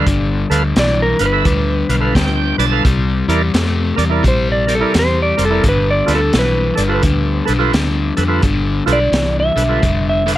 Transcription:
Already playing: D5
0.06 G1 G2 D3, kick, closed hi-hat
0.50 D2 G2 D3 A4 B4 F5, closed hi-hat
0.76 B1 G2 E3 D5, snare, closed hi-hat
1.02 A#4
1.19 G1 G2 D3 B4 F5, closed hi-hat
1.26 B4
1.32 A4 B4 E5
1.45 D2 G2 D3, kick, closed hi-hat
1.89 B1 G2 D3 B4 F5, closed hi-hat
2.00 A4 B4 F5
2.15 D2 G2 D3 G5, kick, snare, closed hi-hat
2.58 B1 G2 D3 B4 D5 A5, closed hi-hat
2.71 A4 B4 F5
2.85 C2 C3 G3, kick, closed hi-hat
3.28 E2 C3 G3 E4 A#4 D5, closed hi-hat
3.54 F2 C3 A3, snare, closed hi-hat
3.96 E2 C3 G3 A#4 D5, closed hi-hat
4.10 E4 A#4 D5
4.23 A#1 C3 G3, kick, closed hi-hat
4.28 C5
4.52 D5
4.67 C3 G3 A#4 D5, closed hi-hat
4.75 A4
4.80 E4 A#4 D5
4.94 E2 C3 G3, snare, closed hi-hat
4.99 C5
5.22 D5
5.37 F1 C3 G3 A#4 C5, closed hi-hat
5.45 A4
5.50 E4 A#4 D5
5.64 G1 G2 D3, kick, closed hi-hat
5.69 B4
5.91 D5
6.06 D2 G2 D3 F4 A4 B4, snare, closed hi-hat
6.15 A4
6.33 B1 G2 E3, snare, closed hi-hat
6.39 B4
6.75 G1 G2 D3 A4 D5, closed hi-hat
6.88 F4 A4 B4
7.03 D2 G2 D3, kick, closed hi-hat
7.45 B1 G2 D3 A4 B4, closed hi-hat
7.59 F4 A4 B4
7.73 D2 G2 D3, snare, closed hi-hat
8.17 F2 G2 D3 A4 B4, closed hi-hat
8.28 F4 A4 B4
8.42 G1 G2 D3, kick, closed hi-hat
8.86 B1 G2 D3 F4 A4 B4, closed hi-hat
8.93 D5
9.12 C2 G2 E3, snare, closed hi-hat
9.40 E5
9.56 B1 G2 D3 A4 B4, closed hi-hat
9.69 F4 A4 B4
9.82 F1 G2 D3, kick, closed hi-hat
10.09 E5
10.26 G2 D3 A4 B4, closed hi-hat

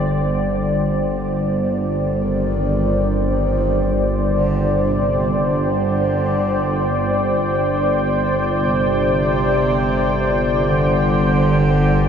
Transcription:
Already playing: C5 D5 G5
0.08 G1 D3
0.82 G5
2.23 D#3
3.29 D#3
4.33 D3
4.86 C3
5.34 D#3
5.39 D3
8.59 C3
10.69 D3

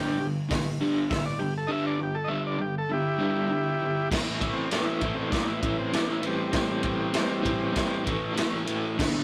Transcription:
Already playing: G2 D3 G3 G4
0.20 G2 D3
0.49 G2 D3, kick, snare, open hi-hat
0.81 G2 D3 G3
1.10 G2 D3 E5, kick, snare, open hi-hat
1.26 D5
1.39 G2 D3 G4
1.58 A4
1.67 G2 D3 G3 D#5
1.72 E5
1.87 D5
2.00 G2 D3 G4
2.15 A4
2.24 G2 D#5 E5
2.29 D3 G3
2.47 D5
2.59 G2 D3 G4
2.78 A4
2.90 G2 D3 E4 G4
3.18 G2 D3 G3
3.50 G2 D3
3.82 G2 D3
4.11 A2 E3 A3, kick, snare, crash
4.40 A2 E3 A3 E4, kick, ride
4.53 C4
4.71 A2 E3 A3 D4, snare, ride
4.84 E4
4.99 A2 E3 A3 E4, kick, ride
5.15 C4
5.31 A2 E3 A3 D4, kick, snare, ride
5.48 E4
5.61 A2 E3 A3 E4, kick, ride
5.79 C4
5.92 A2 E3 A3 D4, snare, ride
6.12 E4
6.21 A2 E3 A3, ride
6.27 G3 C4
6.52 A2 E3 A3, kick, snare, ride
6.82 A2 E3 A3, kick, ride
7.12 A2 E3 A3, snare, ride
7.42 A2 E3 A3, kick, ride
7.74 A2 E3 A3, kick, snare, ride
8.03 A2 E3 A3, kick, ride
8.34 A2 E3 A3, ride
8.39 snare
8.64 A2 E3 A3, ride
8.97 G2 D3 G3, kick, snare, crash

